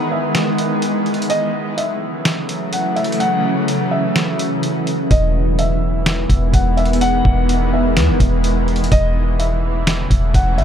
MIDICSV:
0, 0, Header, 1, 5, 480
1, 0, Start_track
1, 0, Key_signature, 4, "major"
1, 0, Tempo, 476190
1, 1308, Time_signature, 4, 2, 24, 8
1, 10729, End_track
2, 0, Start_track
2, 0, Title_t, "Felt piano"
2, 0, Program_c, 0, 0
2, 116, Note_on_c, 0, 76, 76
2, 341, Note_off_c, 0, 76, 0
2, 1308, Note_on_c, 0, 75, 119
2, 1760, Note_off_c, 0, 75, 0
2, 1788, Note_on_c, 0, 76, 72
2, 2708, Note_off_c, 0, 76, 0
2, 2752, Note_on_c, 0, 78, 82
2, 2979, Note_off_c, 0, 78, 0
2, 2984, Note_on_c, 0, 76, 79
2, 3214, Note_off_c, 0, 76, 0
2, 3225, Note_on_c, 0, 78, 107
2, 3907, Note_off_c, 0, 78, 0
2, 3945, Note_on_c, 0, 76, 84
2, 4627, Note_off_c, 0, 76, 0
2, 5151, Note_on_c, 0, 75, 98
2, 5601, Note_off_c, 0, 75, 0
2, 5634, Note_on_c, 0, 76, 78
2, 6551, Note_off_c, 0, 76, 0
2, 6589, Note_on_c, 0, 78, 76
2, 6817, Note_off_c, 0, 78, 0
2, 6826, Note_on_c, 0, 76, 75
2, 7056, Note_off_c, 0, 76, 0
2, 7069, Note_on_c, 0, 78, 117
2, 7748, Note_off_c, 0, 78, 0
2, 7796, Note_on_c, 0, 76, 78
2, 8021, Note_off_c, 0, 76, 0
2, 8989, Note_on_c, 0, 75, 121
2, 9440, Note_off_c, 0, 75, 0
2, 9468, Note_on_c, 0, 76, 73
2, 10388, Note_off_c, 0, 76, 0
2, 10433, Note_on_c, 0, 78, 84
2, 10659, Note_off_c, 0, 78, 0
2, 10664, Note_on_c, 0, 76, 78
2, 10729, Note_off_c, 0, 76, 0
2, 10729, End_track
3, 0, Start_track
3, 0, Title_t, "Ambient pad"
3, 0, Program_c, 1, 92
3, 0, Note_on_c, 1, 51, 79
3, 0, Note_on_c, 1, 52, 90
3, 0, Note_on_c, 1, 56, 75
3, 0, Note_on_c, 1, 59, 73
3, 1268, Note_off_c, 1, 52, 0
3, 1270, Note_off_c, 1, 51, 0
3, 1270, Note_off_c, 1, 56, 0
3, 1270, Note_off_c, 1, 59, 0
3, 1307, Note_on_c, 1, 49, 77
3, 1308, Note_on_c, 1, 52, 86
3, 1308, Note_on_c, 1, 54, 76
3, 1308, Note_on_c, 1, 57, 74
3, 5110, Note_off_c, 1, 49, 0
3, 5110, Note_off_c, 1, 54, 0
3, 5110, Note_off_c, 1, 57, 0
3, 5148, Note_on_c, 1, 51, 81
3, 5148, Note_on_c, 1, 56, 73
3, 5148, Note_on_c, 1, 59, 73
3, 8950, Note_off_c, 1, 51, 0
3, 8950, Note_off_c, 1, 56, 0
3, 8950, Note_off_c, 1, 59, 0
3, 8988, Note_on_c, 1, 49, 82
3, 8988, Note_on_c, 1, 54, 72
3, 8988, Note_on_c, 1, 57, 72
3, 10729, Note_off_c, 1, 49, 0
3, 10729, Note_off_c, 1, 52, 0
3, 10729, Note_off_c, 1, 54, 0
3, 10729, Note_off_c, 1, 57, 0
3, 10729, End_track
4, 0, Start_track
4, 0, Title_t, "808-style bass"
4, 0, Program_c, 2, 38
4, 5149, Note_on_c, 2, 28, 110
4, 6308, Note_off_c, 2, 28, 0
4, 6346, Note_on_c, 2, 28, 104
4, 6578, Note_off_c, 2, 28, 0
4, 6587, Note_on_c, 2, 28, 105
4, 7279, Note_off_c, 2, 28, 0
4, 7309, Note_on_c, 2, 28, 102
4, 8029, Note_on_c, 2, 40, 96
4, 8044, Note_off_c, 2, 28, 0
4, 8149, Note_on_c, 2, 28, 99
4, 8164, Note_off_c, 2, 40, 0
4, 8260, Note_off_c, 2, 28, 0
4, 8266, Note_on_c, 2, 28, 102
4, 8959, Note_off_c, 2, 28, 0
4, 8988, Note_on_c, 2, 28, 114
4, 10148, Note_off_c, 2, 28, 0
4, 10186, Note_on_c, 2, 28, 100
4, 10418, Note_off_c, 2, 28, 0
4, 10427, Note_on_c, 2, 28, 102
4, 10668, Note_on_c, 2, 35, 94
4, 10684, Note_off_c, 2, 28, 0
4, 10729, Note_off_c, 2, 35, 0
4, 10729, End_track
5, 0, Start_track
5, 0, Title_t, "Drums"
5, 350, Note_on_c, 9, 38, 121
5, 351, Note_on_c, 9, 42, 80
5, 451, Note_off_c, 9, 38, 0
5, 452, Note_off_c, 9, 42, 0
5, 589, Note_on_c, 9, 42, 74
5, 690, Note_off_c, 9, 42, 0
5, 828, Note_on_c, 9, 42, 74
5, 929, Note_off_c, 9, 42, 0
5, 1069, Note_on_c, 9, 42, 39
5, 1149, Note_off_c, 9, 42, 0
5, 1149, Note_on_c, 9, 42, 54
5, 1229, Note_off_c, 9, 42, 0
5, 1229, Note_on_c, 9, 42, 71
5, 1308, Note_off_c, 9, 42, 0
5, 1308, Note_on_c, 9, 42, 71
5, 1409, Note_off_c, 9, 42, 0
5, 1792, Note_on_c, 9, 42, 80
5, 1893, Note_off_c, 9, 42, 0
5, 2270, Note_on_c, 9, 38, 114
5, 2271, Note_on_c, 9, 42, 82
5, 2371, Note_off_c, 9, 38, 0
5, 2372, Note_off_c, 9, 42, 0
5, 2510, Note_on_c, 9, 42, 72
5, 2610, Note_off_c, 9, 42, 0
5, 2748, Note_on_c, 9, 42, 77
5, 2849, Note_off_c, 9, 42, 0
5, 2989, Note_on_c, 9, 42, 41
5, 3068, Note_off_c, 9, 42, 0
5, 3068, Note_on_c, 9, 42, 56
5, 3149, Note_off_c, 9, 42, 0
5, 3149, Note_on_c, 9, 42, 70
5, 3228, Note_off_c, 9, 42, 0
5, 3228, Note_on_c, 9, 42, 75
5, 3329, Note_off_c, 9, 42, 0
5, 3711, Note_on_c, 9, 42, 83
5, 3812, Note_off_c, 9, 42, 0
5, 4190, Note_on_c, 9, 38, 118
5, 4191, Note_on_c, 9, 42, 77
5, 4291, Note_off_c, 9, 38, 0
5, 4292, Note_off_c, 9, 42, 0
5, 4429, Note_on_c, 9, 42, 72
5, 4530, Note_off_c, 9, 42, 0
5, 4667, Note_on_c, 9, 42, 75
5, 4768, Note_off_c, 9, 42, 0
5, 4909, Note_on_c, 9, 42, 65
5, 5010, Note_off_c, 9, 42, 0
5, 5148, Note_on_c, 9, 42, 72
5, 5149, Note_on_c, 9, 36, 119
5, 5249, Note_off_c, 9, 36, 0
5, 5249, Note_off_c, 9, 42, 0
5, 5632, Note_on_c, 9, 42, 80
5, 5733, Note_off_c, 9, 42, 0
5, 6110, Note_on_c, 9, 38, 117
5, 6111, Note_on_c, 9, 42, 79
5, 6211, Note_off_c, 9, 38, 0
5, 6212, Note_off_c, 9, 42, 0
5, 6346, Note_on_c, 9, 36, 86
5, 6349, Note_on_c, 9, 42, 72
5, 6447, Note_off_c, 9, 36, 0
5, 6450, Note_off_c, 9, 42, 0
5, 6587, Note_on_c, 9, 36, 100
5, 6588, Note_on_c, 9, 42, 76
5, 6688, Note_off_c, 9, 36, 0
5, 6689, Note_off_c, 9, 42, 0
5, 6829, Note_on_c, 9, 42, 39
5, 6910, Note_off_c, 9, 42, 0
5, 6910, Note_on_c, 9, 42, 54
5, 6989, Note_off_c, 9, 42, 0
5, 6989, Note_on_c, 9, 42, 66
5, 7069, Note_off_c, 9, 42, 0
5, 7069, Note_on_c, 9, 42, 75
5, 7170, Note_off_c, 9, 42, 0
5, 7309, Note_on_c, 9, 36, 100
5, 7410, Note_off_c, 9, 36, 0
5, 7552, Note_on_c, 9, 42, 83
5, 7653, Note_off_c, 9, 42, 0
5, 8030, Note_on_c, 9, 38, 119
5, 8031, Note_on_c, 9, 42, 84
5, 8131, Note_off_c, 9, 38, 0
5, 8132, Note_off_c, 9, 42, 0
5, 8266, Note_on_c, 9, 36, 90
5, 8269, Note_on_c, 9, 42, 75
5, 8367, Note_off_c, 9, 36, 0
5, 8370, Note_off_c, 9, 42, 0
5, 8508, Note_on_c, 9, 42, 72
5, 8609, Note_off_c, 9, 42, 0
5, 8749, Note_on_c, 9, 42, 40
5, 8829, Note_off_c, 9, 42, 0
5, 8829, Note_on_c, 9, 42, 54
5, 8909, Note_off_c, 9, 42, 0
5, 8909, Note_on_c, 9, 42, 69
5, 8988, Note_off_c, 9, 42, 0
5, 8988, Note_on_c, 9, 42, 76
5, 8989, Note_on_c, 9, 36, 123
5, 9089, Note_off_c, 9, 36, 0
5, 9089, Note_off_c, 9, 42, 0
5, 9472, Note_on_c, 9, 42, 82
5, 9572, Note_off_c, 9, 42, 0
5, 9950, Note_on_c, 9, 38, 116
5, 9951, Note_on_c, 9, 42, 80
5, 10051, Note_off_c, 9, 38, 0
5, 10052, Note_off_c, 9, 42, 0
5, 10186, Note_on_c, 9, 36, 90
5, 10189, Note_on_c, 9, 42, 75
5, 10287, Note_off_c, 9, 36, 0
5, 10290, Note_off_c, 9, 42, 0
5, 10427, Note_on_c, 9, 36, 96
5, 10428, Note_on_c, 9, 42, 74
5, 10528, Note_off_c, 9, 36, 0
5, 10529, Note_off_c, 9, 42, 0
5, 10669, Note_on_c, 9, 42, 41
5, 10729, Note_off_c, 9, 42, 0
5, 10729, End_track
0, 0, End_of_file